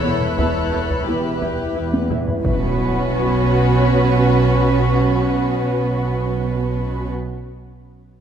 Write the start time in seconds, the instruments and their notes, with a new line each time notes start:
Already playing: double bass section E1, cello section E2, ambient pad E4 B4 E5, violin section A4 C#5 B5 E6 F#6, celesta E6
0.04 viola section B3 E4, taiko low-mid
0.21 taiko low-mid
0.38 double bass section E1, cello section E2, viola section B3 E4, violin section A4 C#5, taiko
0.73 viola section B3 E4
0.90 taiko
1.07 double bass section E1, cello section E2, viola section B3 E4, violin section G4 B4
1.42 viola section B3 E4, taiko
1.76 double bass section E1, cello section E2, viola section B3 E4
1.93 taiko high
2.10 viola section B3 E4, taiko low-mid
2.28 taiko low
2.44 double bass section B1, cello section B2, violin section B3 B4 B5, viola section C#4 F#4, ambient pad C#4 C#5 F#5, taiko low, impact
3.15 violin section C#6